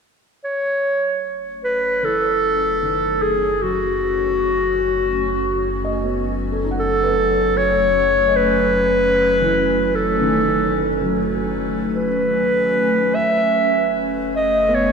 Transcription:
0.44 13.11 F#1 medium
0.44 13.15 F#3 medium
0.44 1.25 C#5 medium
0.78 14.92 C#4 medium
0.93 13.14 A3 medium
1.59 14.75 G#5 medium
1.64 2.06 B4 medium
2.03 2.98 E3 soft
2.03 3.23 A4 medium
2.83 3.78 D#3 soft
3.22 3.64 G#4 medium
3.62 7.37 F#3 soft
3.62 6.39 F#4 medium
5.85 7.18 D#5 medium
6.04 6.78 B3 soft
6.52 7.27 A4 soft
6.64 10.39 D#4 soft
6.71 8.43 F#5 medium
6.79 7.58 A4 medium
7.03 7.10 B4 medium
7.12 10.88 B4 medium
7.57 8.38 C#5 medium
8.28 12.07 D#5 medium
8.36 9.96 B4 medium
9.41 10.37 E3 soft
9.95 11.15 A4 medium
10.21 11.17 D#3 soft
11.01 14.82 F#3 soft
11.95 13.16 B4 medium
13.15 14.92 F#1 medium
13.15 14.92 A3 medium
13.15 13.95 E5 medium
14.21 14.92 C#5 medium
14.36 14.76 D#5 medium
14.46 14.92 B4 medium
14.69 14.92 B3 soft
14.74 14.92 C#5 medium

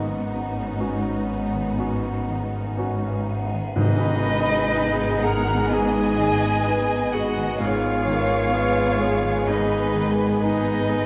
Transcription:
0.00 3.52 G#1 medium
0.00 0.77 G#2 soft
0.00 1.77 G#2 soft
0.00 3.52 G#2 medium
0.00 0.83 F#3 medium
0.00 3.44 B3 medium
0.00 3.52 B3 medium
0.00 3.43 C#4 medium
0.00 2.98 D#4 soft
0.00 3.50 D#4 medium
0.00 3.52 F#4 soft
0.00 2.73 A#4 soft
0.00 2.73 D#5 medium
0.06 1.53 D#3 soft
0.31 1.28 B3 soft
0.55 1.03 C#4 soft
0.80 1.74 B3 soft
0.80 1.75 C#4 soft
0.80 2.78 F#4 soft
0.80 1.75 F#4 soft
1.05 2.53 C#4 soft
1.29 2.02 B3 soft
1.54 2.28 D#3 soft
1.78 3.76 G#2 soft
1.78 2.73 B3 soft
1.78 2.73 C#4 soft
1.78 2.74 F#4 soft
2.03 3.28 B3 soft
2.29 3.52 D#3 soft
2.54 3.02 C#4 soft
2.77 3.72 B3 soft
2.77 3.72 C#4 soft
2.77 3.73 F#4 soft
2.77 3.81 F#4 soft
3.04 3.81 C#4 soft
3.29 7.19 B3 soft
3.53 3.81 D#3 soft
3.75 7.56 G#1 medium
3.75 5.66 G#2 medium
3.75 5.18 G#2 medium
3.75 5.70 G#2 medium
3.75 7.56 G#2 medium
3.75 7.56 G#3 medium
3.75 7.56 B3 medium
3.75 5.27 D#4 medium
3.75 7.56 G#4 medium
3.75 5.19 B4 medium
3.75 5.25 D#5 medium
3.75 5.23 D#5 loud
3.75 tam-tam medium
4.03 5.46 D#3 medium
4.26 5.03 D#3 soft
4.26 8.16 G#3 soft
4.50 4.97 D#4 medium
4.74 5.52 D#4 soft
4.74 6.65 G#4 medium
4.99 6.40 D#4 soft
5.22 6.00 G#4 medium
5.22 5.75 A#4 medium
5.22 5.70 F#5 medium
5.22 5.72 A#5 loud
5.22 5.74 A#5 medium
5.47 6.17 D#3 soft
5.70 7.55 G#2 medium
5.70 7.58 G#2 medium
5.70 6.63 G#4 medium
5.70 7.16 G#4 medium
5.70 7.11 D#5 medium
5.70 7.14 G#5 loud
5.70 7.15 G#5 medium
6.18 7.35 D#3 soft
6.18 6.94 D#3 soft
6.42 6.88 D#4 medium
6.66 7.41 D#4 medium
6.66 8.51 G#4 medium
6.66 7.59 B4 medium
6.89 8.28 D#4 soft
7.12 7.64 F#4 medium
7.12 7.88 G#4 medium
7.12 7.58 D#5 medium
7.12 7.59 F#5 medium
7.36 8.05 D#3 medium
7.59 11.06 G#1 medium
7.59 11.06 G#2 medium
7.59 9.45 G#2 medium
7.59 9.44 G#2 medium
7.59 11.06 G#3 medium
7.59 11.06 B3 medium
7.59 9.47 F4 medium
7.59 11.06 G#4 medium
7.59 8.06 G#4 medium
7.59 9.48 C#5 medium
7.59 9.44 F5 medium
7.59 9.48 F5 loud
8.06 9.22 D#3 soft
8.06 8.82 D#3 soft
8.06 8.53 A#4 medium
8.29 8.74 D#4 soft
8.52 9.29 D#4 medium
8.52 10.41 G#4 medium
8.52 9.00 B4 medium
8.75 10.17 D#4 soft
9.00 10.39 G#4 medium
9.00 9.76 G#4 soft
9.23 9.94 D#3 soft
9.46 11.06 G#2 medium
9.46 10.13 D#4 medium
9.46 10.41 B4 medium
9.46 10.12 D#5 medium
9.46 10.41 D#5 medium
9.95 11.06 D#3 soft
9.95 10.70 D#3 soft
10.18 10.65 D#4 soft
10.42 11.06 D#4 medium
10.42 11.06 G#4 soft
10.42 10.87 B4 medium
10.42 11.06 B4 medium
10.42 11.06 D#5 medium
10.42 11.06 D#5 loud
10.66 11.06 D#4 medium
10.88 11.06 G#4 medium
10.88 11.06 B4 medium

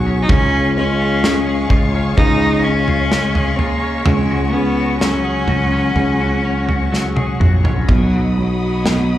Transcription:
0.00 0.26 B1 medium
0.00 0.25 F#3 medium
0.00 0.39 F#3 medium
0.00 0.39 F#4 medium
0.00 1.47 G#4 medium
0.00 7.85 G#4 medium
0.00 7.85 C#5 medium
0.00 0.24 F#5 medium
0.00 7.84 C#6 medium
0.06 0.76 C#4 medium
0.23 0.31 D#4 medium
0.29 1.67 C#2 loud
0.29 1.23 C#3 medium
0.29 2.17 C#3 medium
0.29 0.76 C#4 loud
0.29 4.03 F5 medium
0.29 kick loud
0.29 floor tom loud
0.54 1.00 F4 medium
0.76 2.16 G#3 medium
0.76 1.66 C#4 loud
0.76 1.94 C#4 medium
1.01 1.70 F4 medium
1.24 3.08 C#3 medium
1.24 3.12 G#3 medium
1.24 snare loud
1.47 3.35 G#4 medium
1.70 2.14 C#2 loud
1.70 2.40 F4 medium
1.70 kick medium
1.70 floor tom medium
1.95 2.65 C#4 medium
2.17 3.55 C#2 loud
2.17 4.05 C#3 medium
2.17 4.02 G#3 medium
2.17 2.65 D#4 loud
2.17 kick medium
2.17 floor tom medium
2.42 2.87 F4 medium
2.64 3.60 C#4 loud
2.64 3.83 C#4 medium
2.88 3.58 F4 medium
2.88 floor tom medium
3.12 4.33 G#3 medium
3.12 snare loud
3.35 4.33 G#4 medium
3.35 floor tom medium
3.58 4.06 A#3 medium
3.58 4.16 F4 medium
3.58 floor tom medium
3.84 4.53 C#4 medium
4.04 5.44 C#2 medium
4.04 4.53 C#3 medium
4.04 5.95 C#3 medium
4.04 4.53 G#3 loud
4.04 7.85 F#5 medium
4.04 floor tom loud
4.30 4.77 F#4 medium
4.52 4.99 C#3 medium
4.52 4.99 B3 medium
4.52 5.71 C#4 medium
4.77 5.48 F#4 medium
5.00 5.95 C#3 soft
5.00 6.92 F#3 medium
5.00 7.36 C#4 medium
5.00 snare loud
5.25 7.15 G#4 medium
5.48 5.93 C#2 medium
5.48 6.20 F#4 medium
5.48 floor tom medium
5.72 6.44 C#4 medium
5.96 7.36 C#2 medium
5.96 7.98 C#3 medium
5.96 7.85 C#3 medium
5.96 floor tom medium
6.20 6.68 F#4 medium
6.45 7.63 C#4 medium
6.68 7.39 F#4 medium
6.68 floor tom medium
6.92 8.48 F#3 medium
6.92 snare medium
7.16 7.98 G#4 medium
7.16 high tom medium
7.40 7.85 A#1 medium
7.40 8.48 F#4 medium
7.40 mid tom medium
7.64 7.98 C#4 medium
7.64 floor tom medium
7.88 9.18 B1 medium
7.88 8.83 B2 medium
7.88 8.35 F#3 medium
7.88 9.18 F#4 medium
7.88 9.18 D#5 medium
7.88 9.18 B5 medium
7.88 9.18 D#6 medium
7.88 kick medium
7.88 floor tom medium
8.38 9.18 F#3 soft
8.38 9.18 F#3 medium
8.85 9.18 B2 soft
8.85 snare loud

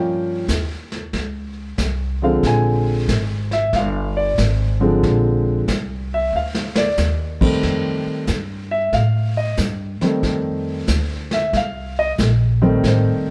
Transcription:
0.00 0.46 G2 medium
0.00 0.43 F3 medium
0.00 0.43 G3 medium
0.00 0.44 A#3 medium
0.00 0.44 C#4 medium
0.00 0.47 G5 medium
0.48 1.11 D#2 medium
0.48 kick soft
0.48 snare medium
0.48 hi-hat pedal medium
0.92 snare soft
1.13 1.76 C#2 medium
1.13 brush sweep soft
1.13 kick soft
1.13 snare soft
1.78 2.41 C2 medium
1.78 kick soft
1.78 snare medium
1.78 hi-hat pedal soft
2.22 3.04 D3 medium
2.22 3.04 F3 soft
2.22 3.04 G#3 soft
2.22 3.05 C4 medium
2.22 2.43 F5 medium
2.43 3.06 A#1 medium
2.43 3.06 G#5 medium
2.43 brush sweep soft
2.43 kick soft
2.43 snare soft
3.08 3.71 G#1 medium
3.08 kick soft
3.08 snare medium
3.08 hi-hat pedal medium
3.51 3.73 E5 medium
3.51 snare soft
3.73 4.36 G1 medium
3.73 4.16 F5 medium
3.73 brush sweep soft
3.73 kick soft
3.73 snare soft
4.17 4.37 D5 medium
4.38 5.01 G#1 loud
4.38 kick soft
4.38 snare medium
4.38 hi-hat pedal soft
4.80 5.63 D3 medium
4.80 5.63 F3 medium
4.80 5.63 G#3 medium
4.80 5.63 C4 medium
5.03 5.66 A#1 medium
5.03 brush sweep soft
5.03 kick soft
5.03 snare soft
5.68 6.31 C2 medium
5.68 kick soft
5.68 snare medium
5.68 hi-hat pedal medium
6.14 6.33 E5 medium
6.33 6.96 D2 medium
6.33 6.76 F5 medium
6.55 snare soft
6.76 6.98 D5 medium
6.76 snare medium
6.98 7.61 D#2 medium
6.98 snare medium
6.98 hi-hat pedal medium
7.41 8.23 D#3 medium
7.41 8.23 G3 medium
7.41 8.23 A3 medium
7.41 8.23 C4 medium
7.41 kick medium
7.41 crash medium
7.63 8.03 F2 medium
7.63 brush sweep soft
7.63 kick soft
7.63 snare soft
8.06 muted upright bass stroke soft
8.27 8.91 G2 medium
8.27 kick soft
8.27 snare medium
8.27 hi-hat pedal medium
8.71 8.92 E5 medium
8.93 9.56 A2 medium
8.93 9.35 F5 medium
8.93 brush sweep soft
8.93 kick soft
8.93 snare soft
9.37 9.58 D#5 medium
9.57 9.98 G2 loud
9.57 kick soft
9.57 snare soft
9.57 hi-hat pedal medium
10.01 10.83 D#3 medium
10.01 10.84 G3 medium
10.01 10.84 A3 medium
10.01 10.84 C4 medium
10.01 muted upright bass stroke soft
10.01 snare soft
10.23 10.86 F2 medium
10.23 brush sweep soft
10.23 kick soft
10.23 snare soft
10.88 11.51 D2 medium
10.88 kick soft
10.88 snare medium
10.88 hi-hat pedal medium
11.31 11.53 E5 medium
11.31 snare soft
11.53 12.16 C2 medium
11.53 11.97 F5 loud
11.53 brush sweep soft
11.53 kick soft
11.53 snare soft
11.99 12.11 D#5 loud
12.18 12.81 A#1 medium
12.18 kick soft
12.18 snare medium
12.18 hi-hat pedal medium
12.62 13.30 D#3 medium
12.62 13.30 G3 medium
12.62 13.30 A3 medium
12.62 13.30 C4 medium
12.83 13.07 A1 medium
12.83 brush sweep soft
12.83 kick soft
12.83 snare soft
12.87 13.30 C5 medium
13.05 13.27 F1 soft
13.27 13.30 D#1 medium

